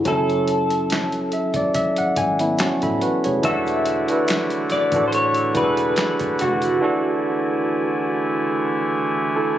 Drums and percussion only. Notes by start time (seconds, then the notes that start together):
0.05 kick, closed hi-hat
0.30 closed hi-hat
0.48 closed hi-hat
0.70 closed hi-hat
0.90 snare, clap, closed hi-hat
1.12 closed hi-hat
1.32 closed hi-hat
1.54 kick, closed hi-hat
1.74 kick, closed hi-hat
1.96 closed hi-hat
2.16 kick, closed hi-hat
2.39 closed hi-hat
2.59 snare, clap, closed hi-hat
2.82 kick, closed hi-hat
3.01 closed hi-hat
3.24 closed hi-hat
3.43 kick, closed hi-hat, shaker
3.67 closed hi-hat, shaker
3.86 closed hi-hat
4.08 closed hi-hat, shaker
4.28 finger snap, snare, clap, closed hi-hat, shaker
4.50 closed hi-hat, shaker
4.70 snare, closed hi-hat, shaker
4.92 kick, closed hi-hat, shaker
5.12 closed hi-hat, shaker
5.35 closed hi-hat, shaker
5.55 kick, closed hi-hat, shaker
5.77 closed hi-hat, shaker
5.96 finger snap, snare, clap, closed hi-hat, shaker
6.19 kick, closed hi-hat, shaker
6.39 closed hi-hat, shaker
6.62 closed hi-hat, shaker